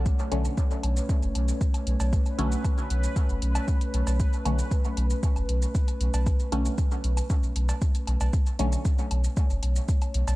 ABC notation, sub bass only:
X:1
M:4/4
L:1/16
Q:1/4=116
K:Bm
V:1 name="Sub bass" clef=bass
z2 B,,, z3 B,,, z2 F,,, B,,, z3 B,,, B,,, | z2 B,,, z3 B,,, z2 F,,, B,,, z3 B,,, B,,, | z2 B,,, z3 B,,, z2 F,,, B,,, z3 B,,, B,,, | z2 B,,, z3 B,,, z2 B,,, B,,, z3 B,,, B,,, |
z2 B,,, z3 B,,, z2 F,,, B,,, z3 B,,, B,,, |]